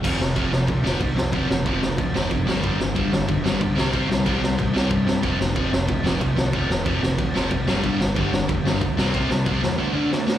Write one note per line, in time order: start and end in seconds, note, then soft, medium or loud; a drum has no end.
0.03 0.19 F1 medium
0.03 0.18 F2 medium
0.03 0.19 C3 loud
0.03 0.19 F3 loud
0.03 kick loud
0.03 crash loud
0.03 crash medium
0.19 0.35 F1 medium
0.19 0.34 F2 medium
0.19 0.34 C3 medium
0.19 snare loud
0.36 0.51 F1 medium
0.36 0.51 F2 medium
0.36 0.51 C3 medium
0.36 0.52 F3 medium
0.36 kick loud
0.36 crash medium
0.52 0.68 F1 medium
0.52 0.66 F2 medium
0.52 0.66 C3 medium
0.52 snare loud
0.67 0.84 D2 medium
0.67 0.82 F2 medium
0.67 0.83 C3 medium
0.67 kick loud
0.67 crash medium
0.83 1.00 F1 medium
0.83 0.99 F2 loud
0.83 0.99 C3 loud
0.83 1.00 F3 loud
0.83 snare loud
1.00 1.32 C2 medium
1.00 1.15 F2 medium
1.00 1.15 C3 medium
1.00 kick loud
1.00 crash medium
1.16 1.31 F2 medium
1.16 1.31 C3 medium
1.16 snare loud
1.32 1.49 F1 medium
1.32 1.48 F2 medium
1.32 1.48 C3 medium
1.32 1.49 F3 loud
1.32 kick loud
1.32 crash medium
1.49 1.65 F1 medium
1.49 1.64 F2 medium
1.49 1.64 C3 medium
1.49 snare loud
1.65 1.81 F1 loud
1.65 1.81 F2 medium
1.65 1.81 C3 loud
1.65 1.81 F3 medium
1.65 kick loud
1.65 crash medium
1.82 1.98 F1 medium
1.82 1.97 F2 medium
1.82 1.97 C3 medium
1.82 snare loud
1.98 2.14 D2 medium
1.98 2.13 F2 medium
1.98 2.13 C3 medium
1.98 kick loud
1.98 crash medium
2.14 2.30 F1 medium
2.14 2.30 F2 loud
2.14 2.30 C3 loud
2.14 2.30 F3 loud
2.14 snare loud
2.31 2.46 F#1 medium
2.31 2.45 F2 medium
2.31 2.46 C3 medium
2.31 kick loud
2.31 crash medium
2.46 2.62 G1 medium
2.46 2.61 G2 medium
2.46 2.62 D3 loud
2.46 2.62 G3 loud
2.46 snare loud
2.62 2.79 G1 loud
2.62 2.78 G2 medium
2.62 2.78 D3 loud
2.62 2.78 G3 loud
2.62 kick loud
2.62 crash medium
2.79 2.95 G1 medium
2.79 2.94 G2 medium
2.79 2.94 D3 medium
2.79 snare loud
2.95 3.11 G1 medium
2.95 3.10 G2 medium
2.95 3.11 D3 loud
2.95 3.11 G3 loud
2.95 kick loud
2.95 crash medium
3.12 3.28 G1 medium
3.12 3.26 G2 medium
3.12 3.26 D3 medium
3.12 snare loud
3.28 3.43 F1 medium
3.28 3.43 G2 medium
3.28 3.43 D3 medium
3.28 kick loud
3.28 crash medium
3.44 3.60 G1 medium
3.44 3.59 G2 loud
3.44 3.60 D3 medium
3.44 3.60 G3 loud
3.44 snare loud
3.60 3.76 B1 loud
3.60 3.75 G2 medium
3.60 3.75 D3 medium
3.60 kick loud
3.60 crash medium
3.76 3.92 C2 medium
3.76 3.91 C3 medium
3.76 3.92 G3 medium
3.76 3.92 C4 loud
3.76 snare loud
3.92 4.07 C2 medium
3.92 4.08 C3 medium
3.92 4.08 G3 loud
3.92 4.08 C4 loud
3.92 kick loud
3.92 crash medium
4.08 4.24 C2 medium
4.08 4.24 C3 medium
4.08 4.24 G3 medium
4.08 snare loud
4.25 4.41 C2 medium
4.25 4.40 C3 medium
4.25 4.40 G3 medium
4.25 4.41 C4 loud
4.25 kick loud
4.25 crash medium
4.41 4.57 C2 medium
4.41 4.56 C3 medium
4.41 4.56 G3 medium
4.41 snare loud
4.58 4.72 A1 medium
4.58 4.72 C3 medium
4.58 4.73 G3 medium
4.58 kick loud
4.58 crash medium
4.73 4.89 C2 medium
4.73 4.89 C3 medium
4.73 4.89 G3 loud
4.73 4.90 C4 loud
4.73 snare loud
4.90 5.22 G2 medium
4.90 5.05 C3 medium
4.90 5.05 G3 medium
4.90 kick loud
4.90 crash medium
5.07 5.22 C3 medium
5.07 5.22 G3 medium
5.07 snare loud
5.23 5.39 F1 medium
5.23 5.38 F2 medium
5.23 5.38 C3 loud
5.23 5.39 F3 loud
5.23 kick loud
5.23 crash medium
5.39 5.55 F1 medium
5.39 5.54 F2 medium
5.39 5.54 C3 medium
5.39 snare loud
5.55 5.71 F1 medium
5.55 5.70 F2 loud
5.55 5.71 C3 loud
5.55 5.71 F3 loud
5.55 kick loud
5.55 crash medium
5.71 5.88 F1 medium
5.71 5.86 F2 medium
5.71 5.87 C3 medium
5.71 snare loud
5.88 6.03 D2 loud
5.88 6.03 F2 medium
5.88 6.03 C3 medium
5.88 kick loud
5.88 crash medium
6.04 6.20 F1 medium
6.04 6.19 F2 loud
6.04 6.20 C3 loud
6.04 6.20 F3 loud
6.04 snare loud
6.20 6.52 C2 loud
6.20 6.35 F2 medium
6.20 6.35 C3 medium
6.20 kick loud
6.20 crash medium
6.37 6.51 F2 medium
6.37 6.52 C3 medium
6.37 snare loud
6.53 6.68 F1 loud
6.53 6.68 F2 medium
6.53 6.69 C3 medium
6.53 6.69 F3 loud
6.53 kick loud
6.53 crash medium
6.69 6.85 F1 medium
6.69 6.84 F2 medium
6.69 6.84 C3 medium
6.69 snare loud
6.85 7.01 F1 medium
6.85 7.01 F2 medium
6.85 7.01 C3 medium
6.85 7.01 F3 loud
6.85 kick loud
6.85 crash medium
7.01 7.17 F1 medium
7.01 7.16 F2 medium
7.01 7.16 C3 medium
7.01 snare loud
7.18 7.34 D2 medium
7.18 7.33 F2 medium
7.18 7.33 C3 medium
7.18 kick loud
7.18 crash medium
7.34 7.50 F1 medium
7.34 7.49 F2 loud
7.34 7.50 C3 loud
7.34 7.50 F3 loud
7.34 snare loud
7.51 7.66 C2 medium
7.51 7.66 F2 medium
7.51 7.66 C3 medium
7.51 kick loud
7.51 crash medium
7.66 7.82 G1 medium
7.66 7.82 G2 medium
7.66 7.83 D3 loud
7.66 7.83 G3 loud
7.66 snare loud
7.83 7.99 G1 loud
7.83 7.98 G2 loud
7.83 7.99 D3 loud
7.83 7.99 G3 loud
7.83 kick loud
7.83 crash medium
8.00 8.15 G1 medium
8.00 8.14 G2 medium
8.00 8.15 D3 medium
8.00 snare loud
8.16 8.31 G1 loud
8.16 8.31 G2 loud
8.16 8.31 D3 loud
8.16 8.32 G3 loud
8.16 kick loud
8.16 crash medium
8.32 8.48 G1 medium
8.32 8.47 G2 medium
8.32 8.47 D3 medium
8.32 snare loud
8.48 8.64 F1 loud
8.48 8.63 G2 medium
8.48 8.63 D3 medium
8.48 kick loud
8.48 crash medium
8.64 8.80 G1 loud
8.64 8.80 G2 loud
8.64 8.81 D3 loud
8.64 8.80 G3 loud
8.64 snare loud
8.81 8.97 D2 medium
8.81 8.96 G2 medium
8.81 8.96 D3 medium
8.81 kick loud
8.81 crash medium
8.97 9.13 C2 loud
8.97 9.12 C3 loud
8.97 9.13 G3 loud
8.97 9.13 C4 loud
8.97 snare loud
9.13 9.29 C2 loud
9.13 9.28 C3 loud
9.13 9.29 G3 loud
9.13 9.29 C4 loud
9.13 kick loud
9.13 crash medium
9.29 9.45 C2 medium
9.29 9.44 C3 medium
9.29 9.44 G3 medium
9.29 snare loud
9.45 9.61 C2 loud
9.45 9.60 C3 medium
9.45 9.61 G3 medium
9.45 9.61 C4 loud
9.45 kick loud
9.45 crash medium
9.61 9.78 E2 medium
9.61 9.76 C3 medium
9.61 9.77 G3 medium
9.61 snare loud
9.78 9.92 D3 loud
9.78 9.93 A3 loud
9.78 9.93 D4 loud
9.93 10.09 D3 loud
9.93 10.10 A3 loud
9.93 10.10 D4 loud
10.11 10.25 D3 medium
10.11 10.25 A3 medium
10.11 snare medium
10.27 10.38 D3 medium
10.27 10.38 A3 medium
10.27 snare medium